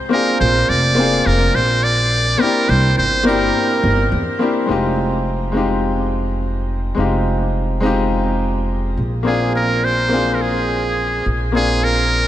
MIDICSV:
0, 0, Header, 1, 4, 480
1, 0, Start_track
1, 0, Tempo, 571429
1, 99, Time_signature, 4, 2, 24, 8
1, 10312, End_track
2, 0, Start_track
2, 0, Title_t, "Muted trumpet"
2, 0, Program_c, 0, 59
2, 101, Note_on_c, 0, 70, 96
2, 323, Note_off_c, 0, 70, 0
2, 340, Note_on_c, 0, 72, 99
2, 580, Note_on_c, 0, 74, 113
2, 593, Note_off_c, 0, 72, 0
2, 1063, Note_on_c, 0, 70, 96
2, 1075, Note_off_c, 0, 74, 0
2, 1302, Note_on_c, 0, 72, 97
2, 1315, Note_off_c, 0, 70, 0
2, 1541, Note_on_c, 0, 74, 114
2, 1554, Note_off_c, 0, 72, 0
2, 2023, Note_on_c, 0, 70, 97
2, 2036, Note_off_c, 0, 74, 0
2, 2261, Note_on_c, 0, 72, 88
2, 2273, Note_off_c, 0, 70, 0
2, 2500, Note_off_c, 0, 72, 0
2, 2503, Note_on_c, 0, 72, 99
2, 2725, Note_off_c, 0, 72, 0
2, 2744, Note_on_c, 0, 70, 85
2, 3428, Note_off_c, 0, 70, 0
2, 7784, Note_on_c, 0, 68, 79
2, 8005, Note_off_c, 0, 68, 0
2, 8026, Note_on_c, 0, 70, 86
2, 8267, Note_on_c, 0, 72, 96
2, 8280, Note_off_c, 0, 70, 0
2, 8690, Note_on_c, 0, 70, 55
2, 8703, Note_off_c, 0, 72, 0
2, 8748, Note_on_c, 0, 68, 80
2, 8761, Note_off_c, 0, 70, 0
2, 9464, Note_off_c, 0, 68, 0
2, 9708, Note_on_c, 0, 68, 96
2, 9945, Note_on_c, 0, 70, 100
2, 9958, Note_off_c, 0, 68, 0
2, 10312, Note_off_c, 0, 70, 0
2, 10312, End_track
3, 0, Start_track
3, 0, Title_t, "Grand piano"
3, 0, Program_c, 1, 0
3, 6, Control_c, 1, 64, 127
3, 75, Note_on_c, 1, 58, 81
3, 86, Note_on_c, 1, 60, 75
3, 98, Note_on_c, 1, 62, 76
3, 108, Note_on_c, 1, 65, 75
3, 120, Note_on_c, 1, 68, 88
3, 780, Note_off_c, 1, 58, 0
3, 785, Note_off_c, 1, 60, 0
3, 791, Note_off_c, 1, 62, 0
3, 793, Note_on_c, 1, 58, 83
3, 796, Note_off_c, 1, 65, 0
3, 802, Note_off_c, 1, 68, 0
3, 806, Note_on_c, 1, 60, 74
3, 817, Note_on_c, 1, 62, 74
3, 827, Note_on_c, 1, 65, 76
3, 839, Note_on_c, 1, 68, 93
3, 1979, Note_off_c, 1, 58, 0
3, 1985, Note_off_c, 1, 60, 0
3, 1991, Note_off_c, 1, 62, 0
3, 1994, Note_on_c, 1, 58, 75
3, 1996, Note_off_c, 1, 65, 0
3, 2002, Note_off_c, 1, 68, 0
3, 2005, Note_on_c, 1, 60, 71
3, 2016, Note_on_c, 1, 62, 68
3, 2029, Note_on_c, 1, 64, 73
3, 2031, Control_c, 1, 64, 0
3, 2039, Note_on_c, 1, 67, 87
3, 2174, Control_c, 1, 64, 127
3, 2699, Note_off_c, 1, 58, 0
3, 2705, Note_off_c, 1, 60, 0
3, 2710, Note_off_c, 1, 62, 0
3, 2715, Note_on_c, 1, 58, 94
3, 2717, Note_off_c, 1, 64, 0
3, 2722, Note_off_c, 1, 67, 0
3, 2727, Note_on_c, 1, 60, 84
3, 2738, Note_on_c, 1, 62, 91
3, 2747, Note_on_c, 1, 64, 89
3, 2760, Note_on_c, 1, 67, 106
3, 3665, Note_off_c, 1, 58, 0
3, 3670, Note_off_c, 1, 60, 0
3, 3676, Note_off_c, 1, 62, 0
3, 3680, Note_off_c, 1, 64, 0
3, 3687, Note_off_c, 1, 67, 0
3, 3688, Note_on_c, 1, 58, 75
3, 3691, Note_on_c, 1, 60, 70
3, 3697, Note_on_c, 1, 62, 65
3, 3703, Note_on_c, 1, 64, 68
3, 3708, Note_on_c, 1, 67, 79
3, 3906, Note_off_c, 1, 58, 0
3, 3908, Note_off_c, 1, 60, 0
3, 3911, Note_off_c, 1, 62, 0
3, 3911, Note_on_c, 1, 56, 67
3, 3914, Note_off_c, 1, 64, 0
3, 3916, Note_off_c, 1, 67, 0
3, 3924, Note_on_c, 1, 60, 68
3, 3935, Note_on_c, 1, 63, 64
3, 3946, Note_on_c, 1, 65, 62
3, 3950, Control_c, 1, 64, 0
3, 3959, Note_on_c, 1, 67, 82
3, 4104, Control_c, 1, 64, 127
3, 4618, Note_off_c, 1, 56, 0
3, 4624, Note_off_c, 1, 60, 0
3, 4630, Note_off_c, 1, 63, 0
3, 4635, Note_off_c, 1, 65, 0
3, 4635, Note_on_c, 1, 56, 71
3, 4642, Note_off_c, 1, 67, 0
3, 4646, Note_on_c, 1, 60, 66
3, 4657, Note_on_c, 1, 63, 60
3, 4669, Note_on_c, 1, 65, 65
3, 4680, Note_on_c, 1, 67, 76
3, 5820, Note_off_c, 1, 56, 0
3, 5825, Note_off_c, 1, 60, 0
3, 5831, Note_off_c, 1, 63, 0
3, 5834, Note_on_c, 1, 56, 67
3, 5837, Note_off_c, 1, 65, 0
3, 5842, Note_off_c, 1, 67, 0
3, 5846, Note_on_c, 1, 60, 58
3, 5859, Note_on_c, 1, 63, 57
3, 5869, Note_on_c, 1, 65, 60
3, 5880, Note_on_c, 1, 67, 70
3, 6539, Note_off_c, 1, 56, 0
3, 6545, Note_off_c, 1, 60, 0
3, 6552, Note_off_c, 1, 63, 0
3, 6556, Note_on_c, 1, 56, 80
3, 6557, Note_off_c, 1, 65, 0
3, 6562, Note_off_c, 1, 67, 0
3, 6565, Note_on_c, 1, 60, 72
3, 6577, Note_on_c, 1, 63, 77
3, 6589, Note_on_c, 1, 65, 73
3, 6601, Note_on_c, 1, 67, 93
3, 7514, Note_off_c, 1, 56, 0
3, 7519, Note_off_c, 1, 60, 0
3, 7524, Note_off_c, 1, 63, 0
3, 7531, Note_off_c, 1, 65, 0
3, 7536, Note_off_c, 1, 67, 0
3, 7549, Control_c, 1, 64, 0
3, 7711, Control_c, 1, 64, 127
3, 7752, Note_on_c, 1, 58, 73
3, 7766, Note_on_c, 1, 60, 65
3, 7775, Note_on_c, 1, 62, 67
3, 7786, Note_on_c, 1, 65, 70
3, 7799, Note_on_c, 1, 68, 84
3, 8459, Note_off_c, 1, 58, 0
3, 8465, Note_off_c, 1, 60, 0
3, 8470, Note_off_c, 1, 62, 0
3, 8472, Note_on_c, 1, 58, 72
3, 8475, Note_off_c, 1, 65, 0
3, 8481, Note_on_c, 1, 60, 66
3, 8482, Note_off_c, 1, 68, 0
3, 8493, Note_on_c, 1, 62, 66
3, 8504, Note_on_c, 1, 65, 67
3, 8517, Note_on_c, 1, 68, 82
3, 9658, Note_off_c, 1, 58, 0
3, 9663, Note_off_c, 1, 60, 0
3, 9669, Note_off_c, 1, 62, 0
3, 9675, Note_off_c, 1, 65, 0
3, 9676, Note_on_c, 1, 58, 68
3, 9681, Note_off_c, 1, 68, 0
3, 9686, Note_on_c, 1, 60, 62
3, 9698, Note_on_c, 1, 62, 61
3, 9708, Note_on_c, 1, 65, 62
3, 9720, Note_on_c, 1, 68, 73
3, 10312, Note_off_c, 1, 58, 0
3, 10312, Note_off_c, 1, 60, 0
3, 10312, Note_off_c, 1, 62, 0
3, 10312, Note_off_c, 1, 65, 0
3, 10312, Note_off_c, 1, 68, 0
3, 10312, End_track
4, 0, Start_track
4, 0, Title_t, "Upright bass"
4, 0, Program_c, 2, 32
4, 339, Note_on_c, 2, 34, 92
4, 514, Note_off_c, 2, 34, 0
4, 580, Note_on_c, 2, 29, 74
4, 1007, Note_off_c, 2, 29, 0
4, 1059, Note_on_c, 2, 29, 77
4, 1234, Note_off_c, 2, 29, 0
4, 1298, Note_on_c, 2, 34, 80
4, 1966, Note_off_c, 2, 34, 0
4, 2259, Note_on_c, 2, 36, 99
4, 2434, Note_off_c, 2, 36, 0
4, 2499, Note_on_c, 2, 31, 73
4, 2927, Note_off_c, 2, 31, 0
4, 3219, Note_on_c, 2, 31, 85
4, 3394, Note_off_c, 2, 31, 0
4, 3459, Note_on_c, 2, 40, 82
4, 3549, Note_off_c, 2, 40, 0
4, 3937, Note_on_c, 2, 29, 76
4, 5835, Note_off_c, 2, 29, 0
4, 5858, Note_on_c, 2, 29, 72
4, 7516, Note_off_c, 2, 29, 0
4, 7538, Note_on_c, 2, 34, 77
4, 9436, Note_off_c, 2, 34, 0
4, 9458, Note_on_c, 2, 34, 78
4, 10312, Note_off_c, 2, 34, 0
4, 10312, End_track
0, 0, End_of_file